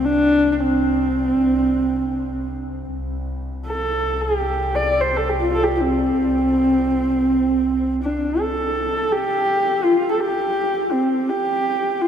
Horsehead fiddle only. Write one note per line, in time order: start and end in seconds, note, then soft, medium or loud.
0.05 0.52 D4 loud
0.52 0.62 D4 medium
0.60 2.53 C4 medium
3.67 4.23 A4 medium
4.21 4.77 G4 medium
4.75 5.02 D5 medium
5.01 5.18 C5 medium
5.16 5.31 A4 medium
5.29 5.40 G4 medium
5.40 5.55 F4 medium
5.40 5.42 G4 medium
5.53 5.65 A4 medium
5.63 5.75 G4 medium
5.76 5.83 F4 medium
5.81 7.97 C4 medium
8.03 8.42 D4 medium
8.40 9.14 A4 medium
9.12 9.85 G4 medium
9.83 10.11 F4 medium
10.11 10.21 A4 medium
10.20 10.94 G4 medium
10.92 11.31 C4 medium
11.29 12.03 G4 medium
12.01 12.08 F4 medium